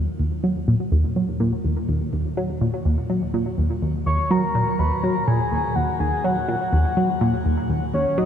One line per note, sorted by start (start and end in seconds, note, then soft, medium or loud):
0.20 0.31 D#2 medium
0.44 0.56 F#3 loud
0.68 0.75 A#2 loud
0.92 1.04 D#2 loud
1.16 1.28 F#3 medium
1.40 1.52 A#2 loud
1.64 1.76 D#2 medium
1.89 2.01 D#2 medium
2.13 2.25 D#2 medium
2.37 2.49 F#3 loud
2.61 2.68 A#2 loud
2.85 2.97 D#2 loud
3.10 3.22 F#3 medium
3.34 3.46 A#2 loud
3.58 3.70 D#2 medium
3.82 3.94 D#2 medium
4.06 4.18 D#2 medium
4.06 4.32 C#6 loud
4.31 4.43 F#3 medium
4.31 4.81 A#5 loud
4.55 4.62 A#2 loud
4.79 4.91 D#2 loud
4.79 5.03 B5 loud
5.03 5.15 F#3 medium
5.03 5.29 A#5 loud
5.27 5.39 A#2 loud
5.27 5.77 G#5 loud
5.52 5.64 D#2 medium
5.75 5.88 D#2 medium
5.75 5.99 F#5 medium
6.00 6.12 D#2 medium
6.00 6.26 G#5 medium
6.24 6.36 F#3 loud
6.24 7.69 F#5 medium
6.48 6.56 A#2 loud
6.73 6.85 D#2 loud
6.97 7.09 F#3 medium
7.21 7.33 A#2 loud
7.45 7.57 D#2 medium
7.70 7.81 D#2 medium
7.94 8.06 D#2 medium
7.94 8.20 C#5 medium
8.18 8.25 F#3 loud
8.18 8.25 D#5 loud